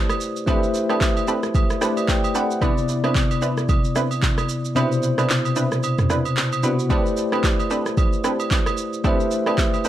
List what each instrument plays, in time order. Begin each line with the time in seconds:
Already playing: tine electric piano A3 E4 G4 B4 C5 D5
0.09 cross-stick, high agogo, shaker
0.21 shaker
0.36 shaker
0.47 tine electric piano A3 E4 G4 B4 C5 E5, synth stab C4 D4 G4 A4 B4, kick, high agogo, shaker
0.63 shaker
0.74 shaker
0.90 synth stab C4 D4 G4 A4 B4, cross-stick, high agogo
1.01 kick, clap, shaker
1.17 high agogo, shaker
1.27 synth stab C4 D4 G4 A4 B4, shaker
1.43 cross-stick, shaker
1.55 kick, high agogo, shaker
1.70 cross-stick, shaker
1.81 tine electric piano A3 E4 G4 B4 C5 D5, synth stab C4 D4 G4 A4 B4, cross-stick, shaker
1.97 high agogo, shaker
2.08 tine electric piano G5, kick, clap, shaker
2.24 high agogo, shaker
2.35 synth stab C4 D4 G4 A4 B4, tine electric piano F#5, shaker
2.51 shaker
2.61 tine electric piano C3 B3 E4 D5, synth stab C4 D4 E4 B4, kick, high agogo, shaker
2.78 shaker
2.89 shaker
3.04 synth stab C4 D4 E4 B4, cross-stick, high agogo
3.15 kick, clap, shaker
3.31 high agogo, shaker
3.42 synth stab C4 D4 E4 B4, shaker
3.58 cross-stick, shaker
3.69 kick, high agogo, shaker
3.84 shaker
3.95 synth stab C4 D4 E4 B4, cross-stick, shaker
4.11 high agogo, shaker
4.22 kick, clap, shaker
4.38 cross-stick, high agogo, shaker
4.49 shaker
4.65 shaker
4.75 tine electric piano B2 C3 E4 C5, synth stab C4 D4 E4 B4, high agogo, shaker
4.92 shaker
5.03 shaker
5.18 synth stab C4 D4 E4 B4, cross-stick, high agogo, shaker
5.30 clap, shaker
5.45 high agogo, shaker
5.56 synth stab C4 D4 E4 B4, shaker
5.72 cross-stick, shaker
5.83 high agogo, shaker
5.99 cross-stick, mid tom, shaker
6.10 synth stab C4 D4 E4 B4, cross-stick, shaker
6.25 high agogo, shaker
6.37 clap, shaker
6.52 high agogo, shaker
6.63 tine electric piano C3 B3 E4 F#4, synth stab C4 D4 E4 B4, shaker
6.79 shaker
6.89 tine electric piano A3 E4 G4 B4 C5 D5, synth stab C4 D4 G4 A4 B4, kick, high agogo, shaker
7.06 shaker
7.17 shaker
7.32 synth stab C4 D4 G4 A4 B4, cross-stick, high agogo
7.44 kick, clap, shaker
7.60 high agogo, shaker
7.70 synth stab C4 D4 G4 A4 B4, shaker
7.86 cross-stick, shaker
7.97 kick, high agogo, shaker
8.13 shaker
8.24 synth stab C4 D4 G4 A4 B4, cross-stick, shaker
8.40 high agogo, shaker
8.51 kick, clap, shaker
8.66 cross-stick, high agogo, shaker
8.78 shaker
8.93 shaker
9.04 tine electric piano A3 E4 G4 B4 C5 E5, synth stab C4 D4 G4 A4 B4, kick, high agogo, shaker
9.20 shaker
9.31 shaker
9.46 synth stab C4 D4 G4 A4 B4, cross-stick, high agogo
9.58 kick, clap, shaker
9.74 high agogo, shaker
9.85 synth stab C4 D4 G4 A4 B4, shaker